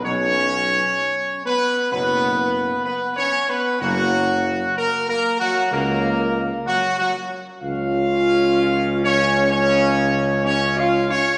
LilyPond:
<<
  \new Staff \with { instrumentName = "Trumpet section" } { \time 4/4 \key des \mixolydian \tempo 4 = 63 des''4. ces''8 ces''4 \tuplet 3/2 { ces''8 des''8 ces''8 } | ges'4 \tuplet 3/2 { bes'8 bes'8 ges'8 } bes'4 \tuplet 3/2 { ges'8 ges'16 r8. } | f''4. des''8 des''4 \tuplet 3/2 { des''8 f''8 des''8 } | }
  \new Staff \with { instrumentName = "French horn section" } { \time 4/4 \key des \mixolydian des'4. ces'8 ces'4 \tuplet 3/2 { ces'8 des'8 ces'8 } | ges4 \tuplet 3/2 { bes8 bes8 ges8 } bes4 \tuplet 3/2 { ges8 ges16 r8. } | f'4. des'8 des'4 \tuplet 3/2 { des'8 f'8 des'8 } | }
  \new Staff \with { instrumentName = "Trombone section" } { \clef bass \time 4/4 \key des \mixolydian <ces ges>8 r4. <ces ges>8 r4. | <des bes>8 r4. <des bes>8 r4. | <des des'>2 <des des'>4 <des des'>4 | }
  \new Staff \with { instrumentName = "Tuba" } { \clef bass \time 4/4 \key des \mixolydian ces,4 r4 ges,,4 r4 | ges,,4 r4 des,4 r4 | des,1 | }
>>